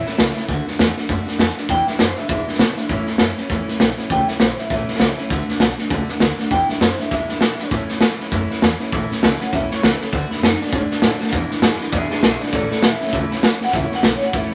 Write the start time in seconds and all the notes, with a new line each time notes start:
Already playing: E5
0.05 A3 C#4 E4, muted upright bass stroke, snare
0.18 C#2 E3 A3 C#4 E4, snare, hi-hat pedal
0.37 A3 C#4 E4, snare
0.48 D2 D3 A3 D4 F#4, kick, snare
0.67 A3 D4 F#4, snare
0.79 E2 D3 A3 D4, snare, hi-hat pedal
0.83 F#4
0.97 A3 D4 F#4, snare
1.09 F#2 D3 A3 D4 F#4, kick, snare
1.26 A3 D4 F#4, snare
1.38 F2 D3 A3 D4 F#4, snare, hi-hat pedal
1.57 A3 D4 F#4, snare
1.69 E2 B2 E3 G#3 D4 E4 G5, kick, snare
1.86 E3 G#3 D4 E4 E5, snare
1.98 F#2 E3 G#3 D4 C5, snare, hi-hat pedal
2.16 G#3 D4 E4 E5, snare
2.20 E3
2.28 E2 G#2 B2 E3 G#3 D4 E4 E5, kick, snare
2.47 E3 G#3 D4 E4, muted upright bass stroke, snare
2.53 snare
2.59 B2 E3 G#3 D4 E4, snare, hi-hat pedal
2.77 E3 G#3 D4 E4, snare
2.89 A2 E3 A3 C#4 E4, kick, snare
3.07 A3 C#4 E4, muted upright bass stroke, snare
3.18 F#2 E3 A3 C#4, snare, hi-hat pedal
3.22 E4
3.37 A3 C#4 E4, snare
3.49 E2 A2 E3 A3 C#4 E4, kick, snare
3.68 A3 C#4 E4, snare
3.79 B1 E3 A3 C#4 E4, snare, hi-hat pedal
3.98 A3 C#4 E4, snare
4.10 C#2 A2 E3 A3 C#4 E4 G5, kick, snare
4.28 A3 C#4 E4 E5, muted upright bass stroke, snare
4.40 B1 E3 A3 C#4 E4 C5, snare, hi-hat pedal
4.58 A3 C#4 E4 E5, snare
4.70 A1 A2 E3 A3 C#4 E4 E5, kick, snare
4.88 C#4 E4, snare
4.92 A3, snare
5.00 C#2 E3 A3 C#4, snare, hi-hat pedal
5.04 E4
5.18 A3 C#4 E4, snare
5.30 D2 D3 A3 D4 F#4, kick, snare
5.48 A3 D4 F#4, muted upright bass stroke, snare
5.60 B1 D3 A3 D4 F#4, snare, hi-hat pedal
5.78 A3 D4 F#4, snare
5.89 C#2 D3 A3 D4 F#4, kick, snare
6.08 A3 D4 F#4, muted upright bass stroke, snare
6.20 D2 D3 A3 D4 F#4, snare, hi-hat pedal
6.39 A3 D4 F#4, snare
6.51 E2 B2 E3 G#3 D4 E4 G5, kick, snare
6.68 G#3 D4 E4 E5, muted upright bass stroke, snare
6.73 E3
6.80 F#2 E3 G#3 D4 C5, snare, hi-hat pedal
6.85 E4
6.99 E3 G#3 D4 E4 E5, snare
7.11 E2 G#2 B2 E3 G#3 D4 E4 E5, kick, snare
7.29 E3 G#3 D4 E4, muted upright bass stroke, snare
7.40 B2 E3 G#3 D4, snare, hi-hat pedal
7.45 E4
7.58 G#3 D4 E4, muted upright bass stroke, snare
7.63 E3
7.71 A2 E3 A3 C#4 E4, kick, snare
7.88 E4, snare
7.92 A3 C#4
8.00 G#2 E3 A3 C#4, snare, hi-hat pedal
8.05 E4
8.20 A3 C#4 E4, muted upright bass stroke, snare
8.32 F#2 A2 E3 A3 C#4 E4, kick, snare
8.50 A3 C#4 E4, muted upright bass stroke, snare
8.61 E2 E3 A3 C#4 E4, snare, hi-hat pedal
8.80 A3 C#4 E4, snare
8.92 A1 A2 E3 A3 C#4 E4, kick, snare
9.09 A3 C#4 E4, muted upright bass stroke, snare
9.22 C#2 E3 A3 C#4 E4, snare, hi-hat pedal
9.40 A3 C#4 E4 F#5, muted upright bass stroke, snare
9.53 B1 A2 E3 A3 C#4 E4 E5, kick, snare
9.69 A3 C#4 E4 C#5, muted upright bass stroke, snare
9.81 C#2 E3 A3 C#4 E4 B4, snare, hi-hat pedal
10.00 A3 C#4 E4 A4, muted upright bass stroke, snare
10.12 D2 D3 A3 D4 F#4, kick, snare
10.30 A3 D4 E4 F#4, muted upright bass stroke, snare
10.42 F#2 D3 A3 D4 D#4 F#4, snare, hi-hat pedal
10.60 A3 D4 F#4, snare
10.67 snare
10.72 G#2 D3 A3 D4 F#4, kick, snare
10.90 A3 D4 F#4, muted upright bass stroke, snare
11.02 A2 D3 A3 D4 F#4, snare, hi-hat pedal
11.20 A3 D4 F#4, snare
11.27 snare
11.32 E2 B2 E3 G#3 D4 E4, kick, snare
11.50 E3 G#3 D4 E4, snare
11.62 G#2 E3 G#3 D4 E4, snare, hi-hat pedal
11.80 E3 G#3 D4 E4, snare
11.92 E2 B2 E3 G#3 D4 E4 G#4 E5, kick, snare
12.10 E3 G#3 D4 E4 G#4 E5, muted upright bass stroke, snare
12.21 B1 E3 G#3 D4 G#4 E5, snare, hi-hat pedal
12.26 E4
12.40 E3 G#3 D4 E4 B4 D5, muted upright bass stroke, snare
12.47 snare
12.52 A1 A2 E3 A3 C#4 E4 A4 D5, kick, snare
12.69 C#4 E4 A4 D5, muted upright bass stroke, snare
12.74 A3
12.82 B1 E3 A3 C#4 E5, snare, hi-hat pedal
12.86 E4
13.00 A3 C#4 E4, muted upright bass stroke, snare
13.07 snare
13.12 C#2 A2 E3 A3 C#4 E4, kick, snare
13.30 A3 C#4 E4, muted upright bass stroke, snare
13.42 D2 E3 A3 C#4, snare, hi-hat pedal
13.46 E4
13.60 A3 C#4 E4, muted upright bass stroke, snare
13.64 F#5, snare
13.73 C#2 A2 E3 A3 C#4 E4 E5, kick, snare
13.86 C#5
13.90 C#4 E4, muted upright bass stroke, snare
13.95 A3 F#5
14.02 B1 E3 A3 C#4 E5, snare, hi-hat pedal
14.06 E4
14.15 C#5
14.20 C#4 E4, muted upright bass stroke, snare
14.24 A3 F#5
14.33 A1 A2 E3 A3 C#4 E4 E5, kick, snare
14.46 C#5